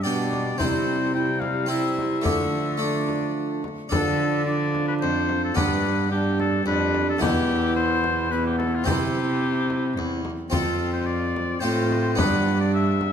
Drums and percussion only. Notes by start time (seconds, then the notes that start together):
0.33 frame drum
0.60 frame drum
1.42 frame drum
1.98 frame drum
2.25 frame drum
3.09 frame drum
3.64 frame drum
3.92 frame drum
4.75 frame drum
5.29 frame drum
5.57 frame drum
6.40 frame drum
6.95 frame drum
7.22 frame drum
8.04 frame drum
8.60 frame drum
8.87 frame drum
9.70 frame drum
10.25 frame drum
10.52 frame drum
11.36 frame drum
11.91 frame drum
12.18 frame drum
13.01 frame drum